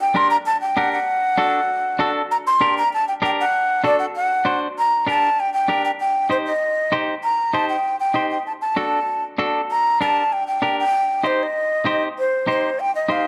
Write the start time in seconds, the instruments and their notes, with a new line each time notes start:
0.01 flute G5
0.15 clean electric guitar D4 G4 A#4, flute C6
0.31 flute A#5
0.46 flute A5
0.61 flute G5
0.77 clean electric guitar D4 G4 A#4, flute F#5
0.93 flute F#5
1.38 clean electric guitar D4 F#4 A4
1.99 clean electric guitar D4 F#4 A4
2.31 flute A#5
2.47 flute C6
2.61 clean electric guitar D4 G4 A#4
2.78 flute A#5
2.93 flute A5
3.08 flute G5
3.22 clean electric guitar D4 G4 A#4, flute G5
3.41 flute F#5
3.84 clean electric guitar D4 F#4 A4, flute D5
3.99 flute F#5
4.16 flute F#5
4.45 clean electric guitar D4 F#4 C5
4.78 flute A#5
5.07 clean electric guitar D4 G4 A#4, flute A5
5.40 flute G5
5.54 flute G5
5.68 clean electric guitar D4 G4 A#4
5.85 flute G5
6.00 flute G5
6.30 clean electric guitar D#4 G4 C5, flute C5
6.46 flute D#5
6.92 clean electric guitar D#4 G4 C5
7.23 flute A#5
7.53 clean electric guitar D#4 G4 C5, flute A5
7.69 flute G5
8.00 flute G5
8.14 clean electric guitar D#4 G4 C5
8.31 flute G5
8.47 flute A5
8.62 flute A5
8.76 clean electric guitar D4 F#4 A4
9.38 clean electric guitar D4 F#4 A4
9.71 flute A#5
10.01 clean electric guitar D4 G4 A#4, flute A5
10.33 flute G5
10.48 flute G5
10.62 clean electric guitar D4 G4 A#4
10.80 flute G5
11.23 clean electric guitar D#4 G4 C5, flute C5
11.43 flute D#5
11.85 clean electric guitar D#4 G4 C5
12.19 flute C5
12.47 clean electric guitar D#4 G4 C5, flute C5
12.80 flute G5
12.95 flute D#5
13.08 clean electric guitar D#4 G4 C5, flute F5